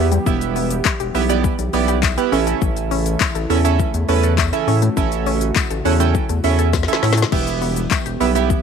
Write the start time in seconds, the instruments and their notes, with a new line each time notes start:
Already playing: analog synth bass E2, analog synth pad E3 G3 B3 G4
0.12 synth arpeggio sound G3, closed hi-hat, shaker
0.26 analog synth bass E1, synth arpeggio sound E3, synth keys B3 E4 G4 E5, kick, shaker
0.41 closed hi-hat, shaker
0.56 synth arpeggio sound B3, open hi-hat, shaker
0.71 closed hi-hat, shaker
0.85 synth arpeggio sound E5, kick, clap, tambourine, shaker
1.00 analog synth bass E1, synth arpeggio sound G4, closed hi-hat, shaker
1.14 analog synth bass B1, synth keys B3 E4 G4 E5, synth arpeggio sound B3, open hi-hat, shaker
1.29 synth arpeggio sound G3, synth keys B3 E4 G4 D5, closed hi-hat, shaker
1.44 synth arpeggio sound E3, kick, shaker
1.59 analog synth bass B1, synth arpeggio sound G3, closed hi-hat, shaker
1.73 analog synth bass B1, synth keys B3 E4 G4 D5, synth arpeggio sound B3, open hi-hat, shaker
1.88 synth arpeggio sound G4, closed hi-hat, shaker
2.03 synth arpeggio sound E5, kick, clap, tambourine, shaker
2.17 synth keys B3 E4 G4 B4, synth arpeggio sound G4, closed hi-hat, shaker
2.32 analog synth bass A1, analog synth pad C#3 A3 E4, synth keys C#4 E4 A4 E5, synth arpeggio sound C#4, open hi-hat, shaker
2.47 synth arpeggio sound A3, closed hi-hat, shaker
2.62 analog synth bass A1, synth arpeggio sound E3, kick, shaker
2.77 closed hi-hat, shaker
2.91 synth arpeggio sound C#4, open hi-hat, shaker
3.06 closed hi-hat, shaker
3.20 synth arpeggio sound E5, kick, clap, tambourine, shaker
3.35 analog synth bass A1, synth arpeggio sound A4, closed hi-hat, shaker
3.50 analog synth bass E2, synth keys C#4 E4 A4 E5, synth arpeggio sound C#4, open hi-hat, shaker
3.64 synth arpeggio sound A3, synth keys C#4 E4 A4 E5, closed hi-hat, shaker
3.79 synth arpeggio sound E3, kick, shaker
3.94 analog synth bass E2, synth arpeggio sound A3, closed hi-hat, shaker
4.09 analog synth bass E2, synth keys C#4 E4 A4 B4, synth arpeggio sound C#4, open hi-hat, shaker
4.23 synth arpeggio sound A4, closed hi-hat, shaker
4.38 synth arpeggio sound E5, kick, clap, tambourine, shaker
4.53 synth keys C#4 E4 A4 E5, synth arpeggio sound A4, closed hi-hat, shaker
4.68 analog synth bass A2, synth arpeggio sound C#4, analog synth pad F#4, open hi-hat, shaker
4.82 synth arpeggio sound A3, closed hi-hat, shaker
4.97 analog synth bass A1, synth arpeggio sound E3, synth keys C#4 E4 A4 E5, kick, shaker
5.12 closed hi-hat, shaker
5.26 synth arpeggio sound C#4, open hi-hat, shaker
5.41 closed hi-hat, shaker
5.56 synth arpeggio sound E5, kick, clap, tambourine, shaker
5.70 analog synth bass A1, synth arpeggio sound A4, closed hi-hat, shaker
5.85 analog synth bass E2, synth keys C#4 E4 A4 F#5, synth arpeggio sound C#4, open hi-hat, shaker
6.00 synth arpeggio sound A3, synth keys C#4 E4 A4 G5, closed hi-hat, shaker
6.15 synth arpeggio sound E3, kick, shaker
6.29 analog synth bass E2, synth arpeggio sound A3, closed hi-hat, shaker
6.44 analog synth bass E2, synth keys C#4 E4 A4 E5, synth arpeggio sound C#4, open hi-hat, shaker
6.59 synth arpeggio sound A4, closed hi-hat, shaker
6.73 synth arpeggio sound E5, kick, snare, tambourine, shaker
6.83 snare
6.88 synth keys C#4 E4 A4 E5, synth arpeggio sound A4, closed hi-hat, shaker
6.93 snare
7.03 analog synth bass A2, synth arpeggio sound C#4, snare, open hi-hat, shaker
7.13 snare
7.17 synth arpeggio sound A3, closed hi-hat, shaker
7.22 snare
7.32 analog synth bass E1, synth arpeggio sound E3, analog synth pad G3 B3 G4, synth keys B3 E4 G4 E5, kick, crash
7.47 closed hi-hat, shaker
7.62 synth arpeggio sound B3, open hi-hat, shaker
7.76 closed hi-hat, shaker
7.91 synth arpeggio sound E5, kick, clap, tambourine, shaker
8.06 analog synth bass E1, synth arpeggio sound G4, closed hi-hat, shaker
8.20 analog synth bass B1, synth keys B3 E4 G4 E5, synth arpeggio sound B3, open hi-hat, shaker
8.35 synth arpeggio sound G3, synth keys B3 E4 G4 E5, closed hi-hat, shaker
8.50 synth arpeggio sound E3, kick, shaker